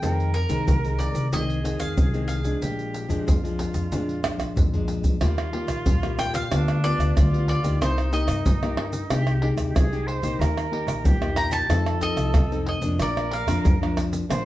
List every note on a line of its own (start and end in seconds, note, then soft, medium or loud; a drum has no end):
0.00 0.43 F2 medium
0.00 0.64 F2 medium
0.00 0.33 D#3 soft
0.00 0.33 G#3 medium
0.00 0.33 C4 medium
0.00 1.28 A#4 loud
0.00 0.30 G5 medium
0.00 pandeiro medium
0.00 shaker medium
0.00 surdo soft
0.20 pandeiro soft
0.20 shaker soft
0.34 0.95 A#4 medium
0.34 pandeiro medium
0.49 0.63 C2 medium
0.49 0.77 D#3 medium
0.49 0.77 G#3 medium
0.49 0.78 C4 medium
0.49 pandeiro medium
0.49 shaker medium
0.49 surdo soft
0.67 1.08 C2 medium
0.67 1.29 C3 medium
0.67 pandeiro medium
0.67 shaker medium
0.67 surdo medium
0.84 1.27 D#3 medium
0.84 1.27 G#3 medium
0.84 1.28 C4 medium
0.84 pandeiro soft
0.84 shaker soft
0.99 1.32 D5 medium
0.99 pandeiro medium
0.99 shaker medium
0.99 surdo soft
1.14 1.70 C2 medium
1.14 pandeiro medium
1.14 shaker medium
1.32 1.94 F2 medium
1.32 1.59 D#3 medium
1.32 1.59 G#3 medium
1.32 1.60 C4 medium
1.32 2.64 G#4 medium
1.32 1.83 D#5 medium
1.32 pandeiro medium
1.32 shaker medium
1.32 surdo medium
1.50 pandeiro soft
1.50 shaker soft
1.64 2.08 D#3 medium
1.64 2.08 G#3 medium
1.64 2.08 C4 medium
1.64 pandeiro medium
1.64 shaker medium
1.64 surdo soft
1.78 1.93 F2 medium
1.78 2.27 F5 medium
1.78 pandeiro medium
1.78 shaker medium
1.78 surdo soft
1.97 2.52 C2 medium
1.97 2.59 C3 medium
1.97 pandeiro medium
1.97 shaker medium
1.97 surdo loud
2.14 2.41 D#3 medium
2.14 2.41 G#3 medium
2.14 2.41 C4 medium
2.14 pandeiro soft
2.14 shaker soft
2.28 4.51 F5 medium
2.28 pandeiro medium
2.28 shaker medium
2.44 3.05 F3 soft
2.44 3.05 G#3 medium
2.44 3.05 D4 medium
2.44 pandeiro medium
2.44 shaker medium
2.44 surdo soft
2.61 3.03 A#1 medium
2.61 3.24 A#2 medium
2.61 3.19 G4 medium
2.61 pandeiro medium
2.61 shaker medium
2.61 surdo medium
2.79 pandeiro soft
2.79 shaker soft
2.94 pandeiro medium
2.94 shaker medium
3.09 3.23 F2 medium
3.09 3.37 F3 medium
3.09 3.37 G#3 medium
3.09 3.37 D4 medium
3.09 pandeiro medium
3.09 shaker medium
3.09 surdo soft
3.19 3.28 G4 medium
3.26 3.88 F2 medium
3.26 3.68 F2 medium
3.26 4.89 F4 medium
3.26 pandeiro medium
3.26 shaker medium
3.26 surdo medium
3.44 3.87 F3 medium
3.44 3.87 G#3 soft
3.44 3.87 D4 medium
3.44 pandeiro soft
3.44 shaker soft
3.59 pandeiro medium
3.59 shaker medium
3.59 surdo soft
3.74 4.29 F2 medium
3.74 pandeiro medium
3.74 shaker medium
3.92 4.53 A#2 medium
3.92 4.19 F3 soft
3.92 4.19 G#3 medium
3.92 4.19 D4 medium
3.92 pandeiro medium
3.92 shaker medium
3.92 surdo medium
4.09 pandeiro soft
4.09 shaker soft
4.23 4.67 F3 medium
4.23 4.67 G#3 soft
4.23 4.67 D4 medium
4.23 pandeiro medium
4.23 tamborim medium
4.23 shaker medium
4.23 surdo soft
4.38 4.53 A#1 medium
4.38 pandeiro soft
4.38 tamborim medium
4.38 shaker medium
4.38 surdo soft
4.56 5.11 A#1 medium
4.56 5.18 F2 medium
4.56 surdo medium
4.56 pandeiro medium
4.56 shaker medium
4.56 surdo loud
4.73 5.16 F3 medium
4.73 5.17 G#3 medium
4.73 5.17 D4 medium
4.73 surdo medium
4.73 pandeiro soft
4.73 shaker soft
4.88 pandeiro medium
4.88 shaker medium
5.04 pandeiro soft
5.04 shaker medium
5.04 surdo medium
5.21 5.62 D#2 medium
5.21 5.83 D#3 medium
5.21 5.48 G3 medium
5.21 5.49 A#3 medium
5.21 6.47 F4 medium
5.21 5.49 F4 medium
5.21 pandeiro medium
5.21 tamborim medium
5.21 shaker medium
5.21 surdo medium
5.38 pandeiro soft
5.38 tamborim medium
5.38 shaker soft
5.53 5.97 G3 soft
5.53 5.97 A#3 medium
5.53 5.97 F4 medium
5.53 pandeiro medium
5.67 5.82 A#1 medium
5.67 pandeiro medium
5.67 tamborim medium
5.67 shaker medium
5.67 surdo soft
5.85 6.41 D#2 medium
5.85 6.48 A#2 medium
5.85 pandeiro medium
5.85 shaker medium
5.85 surdo loud
6.03 6.46 G3 medium
6.03 6.46 A#3 medium
6.03 6.46 F4 medium
6.03 pandeiro soft
6.03 tamborim medium
6.03 shaker soft
6.19 6.34 G5 medium
6.19 pandeiro medium
6.19 tamborim medium
6.19 shaker medium
6.19 surdo soft
6.34 6.80 F5 loud
6.34 pandeiro medium
6.34 shaker medium
6.50 6.92 D2 medium
6.50 7.12 D3 medium
6.50 6.78 G3 medium
6.50 6.78 B3 medium
6.50 7.17 D4 medium
6.50 6.78 F4 medium
6.50 pandeiro medium
6.50 tamborim medium
6.50 shaker medium
6.50 surdo medium
6.68 pandeiro soft
6.68 tamborim medium
6.68 shaker soft
6.83 7.26 G3 medium
6.83 7.27 B3 medium
6.83 7.27 F4 medium
6.83 7.44 D5 medium
6.83 pandeiro medium
6.83 shaker medium
6.98 7.12 D2 medium
6.98 pandeiro medium
6.98 tamborim medium
6.98 shaker medium
6.98 surdo soft
7.16 7.57 D2 medium
7.16 7.77 D3 medium
7.16 7.81 F4 medium
7.16 pandeiro medium
7.16 tamborim medium
7.16 shaker medium
7.16 surdo medium
7.32 7.59 G3 medium
7.32 7.59 B3 medium
7.32 7.60 F4 medium
7.32 pandeiro soft
7.32 shaker soft
7.48 7.81 D5 medium
7.48 pandeiro medium
7.63 7.77 D2 medium
7.63 8.07 A#3 medium
7.63 8.07 D#4 medium
7.63 8.07 G4 medium
7.63 pandeiro medium
7.63 shaker medium
7.63 surdo soft
7.81 8.22 C2 medium
7.81 8.43 C3 medium
7.81 9.12 D#4 medium
7.81 8.13 C5 medium
7.81 pandeiro medium
7.81 tamborim medium
7.81 shaker medium
7.81 surdo medium
7.98 pandeiro soft
7.98 tamborim medium
7.98 shaker soft
8.12 8.43 A#3 soft
8.12 8.43 D#4 medium
8.12 8.43 G4 medium
8.12 8.74 D#5 medium
8.12 pandeiro medium
8.12 shaker medium
8.28 8.42 G2 medium
8.28 pandeiro medium
8.28 tamborim medium
8.28 shaker medium
8.28 surdo soft
8.45 9.00 G2 medium
8.45 9.07 G2 medium
8.45 pandeiro medium
8.45 shaker medium
8.45 surdo medium
8.63 9.06 A#3 medium
8.63 9.06 D#4 medium
8.63 9.06 G4 medium
8.63 pandeiro soft
8.63 tamborim medium
8.63 shaker soft
8.77 pandeiro medium
8.77 tamborim medium
8.77 surdo soft
8.93 pandeiro medium
8.93 shaker medium
9.10 9.51 C2 medium
9.10 9.72 C3 medium
9.10 9.37 G#3 medium
9.10 9.38 D#4 medium
9.10 9.48 G4 loud
9.10 9.38 G4 medium
9.10 pandeiro medium
9.10 tamborim medium
9.10 shaker medium
9.10 surdo medium
9.27 pandeiro soft
9.27 tamborim medium
9.27 shaker soft
9.42 9.85 G#3 medium
9.42 9.86 D#4 medium
9.42 9.86 G4 medium
9.42 pandeiro medium
9.56 9.74 D#2 medium
9.56 pandeiro medium
9.56 tamborim medium
9.56 shaker medium
9.56 surdo soft
9.68 9.76 G4 medium
9.74 10.16 C2 medium
9.74 10.37 C3 medium
9.74 10.08 G#4 loud
9.74 pandeiro medium
9.74 tamborim medium
9.74 shaker medium
9.74 surdo loud
9.92 10.19 G#3 medium
9.92 10.19 D#4 medium
9.92 10.19 G4 medium
9.92 pandeiro soft
9.92 shaker soft
10.07 10.42 C5 loud
10.07 pandeiro medium
10.22 10.36 A#1 medium
10.22 10.67 A#3 medium
10.22 10.67 D#4 medium
10.22 10.67 G4 medium
10.22 pandeiro medium
10.22 shaker medium
10.22 surdo soft
10.39 10.81 D#2 medium
10.39 11.02 D#3 medium
10.39 11.07 A#4 loud
10.39 pandeiro medium
10.39 tamborim medium
10.39 shaker medium
10.39 surdo medium
10.57 pandeiro soft
10.57 tamborim medium
10.57 shaker soft
10.72 11.15 A#3 medium
10.72 11.16 D#4 medium
10.72 11.16 G4 medium
10.72 pandeiro medium
10.87 11.01 A#1 medium
10.87 pandeiro medium
10.87 tamborim medium
10.87 shaker medium
10.87 surdo soft
11.04 11.60 E2 medium
11.04 11.66 A#2 medium
11.04 11.70 G4 loud
11.04 pandeiro medium
11.04 shaker medium
11.04 surdo loud
11.21 11.65 A#3 medium
11.21 11.65 D#4 medium
11.21 11.65 G4 medium
11.21 pandeiro soft
11.21 tamborim medium
11.21 shaker soft
11.36 11.52 A#5 loud
11.36 pandeiro medium
11.36 tamborim medium
11.36 surdo soft
11.51 11.98 A5 medium
11.51 pandeiro medium
11.51 shaker medium
11.69 12.10 F2 medium
11.69 12.31 F3 medium
11.69 11.97 C4 medium
11.69 11.97 D#4 medium
11.69 12.71 A4 loud
11.69 11.97 A4 medium
11.69 pandeiro medium
11.69 tamborim medium
11.69 shaker medium
11.69 surdo medium
11.86 pandeiro soft
11.86 tamborim medium
11.86 shaker soft
12.01 12.32 C4 medium
12.01 12.32 D#4 medium
12.01 12.32 A4 medium
12.01 12.67 D#5 loud
12.01 pandeiro medium
12.01 shaker medium
12.01 surdo soft
12.16 12.35 C2 medium
12.16 pandeiro medium
12.16 tamborim medium
12.16 shaker medium
12.16 surdo soft
12.34 12.76 F2 medium
12.34 12.96 C3 medium
12.34 pandeiro medium
12.34 tamborim medium
12.34 shaker medium
12.34 surdo loud
12.52 12.79 C4 medium
12.52 12.79 D#4 medium
12.52 12.79 A4 medium
12.52 pandeiro soft
12.52 shaker soft
12.66 12.98 D#5 medium
12.66 pandeiro medium
12.81 12.96 F2 medium
12.81 13.26 F3 medium
12.81 13.27 A#3 medium
12.81 13.27 D4 medium
12.81 pandeiro medium
12.81 shaker medium
12.81 surdo soft
12.99 13.41 A#1 loud
12.99 13.62 A#2 medium
12.99 14.03 A#4 loud
12.99 13.34 D5 medium
12.99 pandeiro medium
12.99 tamborim medium
12.99 shaker medium
12.99 surdo medium
13.17 pandeiro soft
13.17 tamborim medium
13.17 shaker soft
13.31 13.93 F5 medium
13.31 pandeiro medium
13.46 13.61 F2 medium
13.46 13.64 F3 medium
13.46 13.75 A#3 medium
13.46 13.75 D4 medium
13.46 pandeiro medium
13.46 tamborim medium
13.46 shaker medium
13.46 surdo soft
13.64 14.19 F2 medium
13.64 13.80 F3 medium
13.64 pandeiro medium
13.64 shaker medium
13.64 surdo loud
13.81 14.24 F3 medium
13.81 14.25 A#3 medium
13.81 14.25 D4 medium
13.81 pandeiro soft
13.81 tamborim medium
13.81 shaker soft
13.97 pandeiro medium
13.97 tamborim medium
13.97 shaker medium
13.97 surdo soft
14.13 pandeiro medium
14.13 shaker medium
14.29 14.45 A#1 medium
14.29 14.45 A#2 medium
14.29 14.45 F3 medium
14.29 14.45 A#3 medium
14.29 14.45 D4 medium
14.29 14.45 C5 loud
14.29 pandeiro medium
14.29 tamborim medium
14.29 shaker medium
14.29 surdo medium